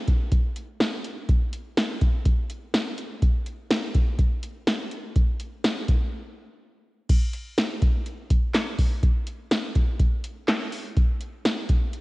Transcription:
0.08 kick, closed hi-hat
0.32 kick, closed hi-hat
0.56 closed hi-hat
0.80 snare, closed hi-hat
1.04 closed hi-hat
1.29 kick, closed hi-hat
1.53 closed hi-hat
1.77 snare, closed hi-hat
2.01 kick, closed hi-hat
2.25 kick, closed hi-hat
2.50 closed hi-hat
2.74 snare, closed hi-hat
2.98 closed hi-hat
3.22 kick, closed hi-hat
3.46 closed hi-hat
3.71 snare, closed hi-hat
3.95 kick, closed hi-hat
4.19 kick, closed hi-hat
4.43 closed hi-hat
4.67 snare, closed hi-hat
4.91 closed hi-hat
5.16 kick, closed hi-hat
5.40 closed hi-hat
5.64 snare, closed hi-hat
5.88 kick, closed hi-hat
7.09 kick, closed hi-hat, crash
7.33 closed hi-hat
7.58 snare, closed hi-hat
7.82 kick, closed hi-hat
8.06 closed hi-hat
8.30 kick, closed hi-hat
8.55 snare, clap, closed hi-hat
8.79 kick, open hi-hat
9.03 kick, closed hi-hat
9.27 closed hi-hat
9.51 snare, closed hi-hat
9.75 kick, closed hi-hat
10.00 kick, closed hi-hat
10.24 closed hi-hat
10.48 snare, clap, closed hi-hat
10.72 open hi-hat
10.97 kick, closed hi-hat
11.20 closed hi-hat
11.45 snare, closed hi-hat
11.69 kick, closed hi-hat
11.93 closed hi-hat

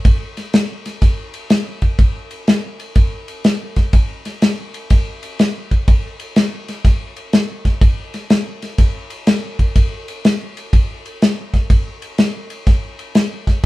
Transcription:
0.05 kick, ride
0.37 snare, ride
0.53 snare, ride
0.86 snare, ride
1.02 kick, snare, ride
1.34 ride
1.50 snare, ride
1.82 kick, ride
1.99 kick, ride
2.31 ride
2.47 snare, ride
2.80 ride
2.96 kick, ride
3.28 ride
3.44 snare, ride
3.76 kick, snare, ride
3.93 kick, ride
4.25 snare, ride
4.42 snare, ride
4.74 ride
4.90 kick, snare, ride
5.23 ride
5.39 snare, ride
5.71 kick, ride
5.88 kick, ride
6.20 ride
6.36 snare, ride
6.68 snare, ride
6.85 kick, snare, ride
7.16 ride
7.33 snare, ride
7.65 kick, snare, ride
7.81 kick, ride
8.14 snare, ride
8.30 snare, ride
8.62 snare, ride
8.78 kick, snare, ride
9.10 ride
9.27 snare, ride
9.59 kick, ride
9.76 kick, ride
10.08 ride
10.25 snare, ride
10.57 ride
10.73 kick, ride
11.06 ride
11.22 snare, ride
11.54 kick, snare, ride
11.70 kick, ride
12.02 ride
12.18 snare, ride
12.50 ride
12.67 kick, snare, ride
12.99 ride
13.15 snare, ride
13.47 kick, snare, ride

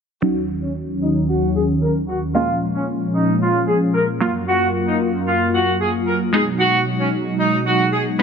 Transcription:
0.22 D#2 D#3 F#3 C#4 D#4 F#4
0.62 C#4
1.02 D#4
1.29 F#4
1.55 G#4
1.82 A#4
2.08 F#4
2.35 A#2 F3 G#3 A#3 C#4 F4
2.75 C#4
3.15 D#4
3.41 F4
3.68 G#4
3.94 A#4
4.20 F#2 F#3 A#3 F4
4.48 F#4
4.87 D#4
5.27 F4
5.54 F#4
5.81 G#4
6.07 A#4
6.33 B2 G#3 B3 D#4 G#4
6.60 F#4
7.00 C#4
7.40 D#4
7.66 F#4
7.93 G#4
8.19 G#3 B3 D#4 B4

